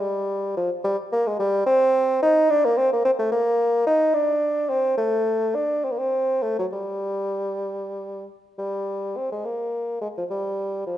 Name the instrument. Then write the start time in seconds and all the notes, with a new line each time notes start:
bassoon
0.01 G3
0.57 F3
0.84 G3
1.12 A#3
1.27 G#3
1.39 G3
1.67 C4
2.22 D#4
2.50 D4
2.65 A#3
2.77 C4
2.93 A#3
3.05 C4
3.19 A3
3.32 A#3
3.86 D#4
4.14 D4
4.70 C4
4.97 A3
5.55 D4
5.85 C4
5.92 A#3
5.99 C4
6.42 A3
6.59 F#3
6.73 G3
8.58 G3
9.17 C4
9.32 G#3
9.45 A#3
10.02 G#3
10.17 F3
10.30 G3
10.87 F3